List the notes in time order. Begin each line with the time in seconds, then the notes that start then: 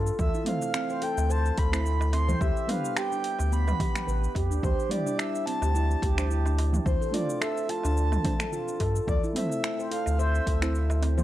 Already playing: G2
0.07 shaker
0.19 D2 A4 E5, kick, darbuka dum, shaker
0.34 E4, shaker
0.45 E3 A3 C4 F5, mid tom, open hi-hat, darbuka ka
0.49 C5
0.62 darbuka ka, shaker
0.74 C4, finger snap, shaker
0.90 C5, shaker
1.02 A4 G5, open hi-hat
1.17 D2, darbuka ka, darbuka tek, shaker
1.30 C5 A5, shaker
1.46 shaker
1.58 D2 A4 B5, kick, open hi-hat
1.71 A3 C4 E4 C5, finger snap, darbuka ka, shaker
1.86 shaker
2.00 darbuka ka, darbuka tek, shaker
2.13 C4 C6, open hi-hat, darbuka tek
2.28 C5, mid tom, darbuka dum, shaker
2.41 D2 G4 E5, kick, darbuka dum, shaker
2.57 shaker
2.67 G3 B3 D4 B4 F5, mid tom, open hi-hat, darbuka ka, darbuka tek
2.71 B4
2.85 shaker
2.97 G4 G5, finger snap, shaker
3.12 D4, shaker
3.24 open hi-hat
3.39 D2, darbuka ka, darbuka tek, shaker
3.52 B3 B5, shaker
3.68 B4, mid tom, darbuka tek, shaker
3.80 G4, kick, open hi-hat, darbuka dum
3.96 finger snap, mid tom, shaker
4.07 A1 B4, shaker
4.24 shaker
4.35 F2 G4, kick, open hi-hat, darbuka tek
4.51 D2 D4, shaker
4.63 D2 G4 C5, kick, darbuka dum, shaker
4.80 shaker
4.89 G3 D4 E4 D5, mid tom, open hi-hat, darbuka ka
4.93 C5
5.07 D4, darbuka ka, shaker
5.18 E5, finger snap, shaker
5.35 shaker
5.46 C4 A5, open hi-hat
5.62 D2 G4, darbuka ka, darbuka tek, shaker
5.75 E4, shaker
5.91 shaker
6.02 D2 G4, kick, open hi-hat
6.16 G3 D4 E4 C5, finger snap, darbuka ka, shaker
6.30 E4, shaker
6.45 D4, darbuka ka, darbuka tek, shaker
6.58 open hi-hat, darbuka tek
6.73 mid tom, darbuka dum, shaker
6.86 D2 C4 C5, kick, darbuka dum, shaker
7.01 A4, shaker
7.11 A3 D4 F4 D5, mid tom, open hi-hat, darbuka ka
7.15 C5
7.30 shaker
7.41 A4 E5, finger snap, shaker
7.57 shaker
7.69 F4 A5, open hi-hat
7.83 D2 D4, darbuka ka, darbuka tek, shaker
7.97 shaker
8.12 mid tom, darbuka tek, shaker
8.23 A3 D4 F4 C5, kick, open hi-hat, darbuka dum
8.40 A4, finger snap, mid tom, shaker
8.53 F4, shaker
8.68 shaker
8.80 G2 A4, kick, open hi-hat, darbuka tek
8.96 shaker
9.07 D2 A4 D5, kick, darbuka dum, shaker
9.24 E4, shaker
9.33 A3 C4 E4 E5, mid tom, open hi-hat, darbuka ka
9.37 C5
9.50 darbuka ka, shaker
9.63 C4, finger snap, shaker
9.79 C5, shaker
9.91 A4 F5, open hi-hat
10.06 D2, darbuka ka, darbuka tek, shaker
10.19 C5 E5, shaker
10.35 shaker
10.47 D2 A4, kick, open hi-hat
10.61 A3 C4 E4 C5, finger snap, darbuka ka, shaker
10.75 shaker
10.90 darbuka ka, darbuka tek, shaker
11.02 C4, open hi-hat, darbuka tek
11.17 C5, mid tom, darbuka dum, shaker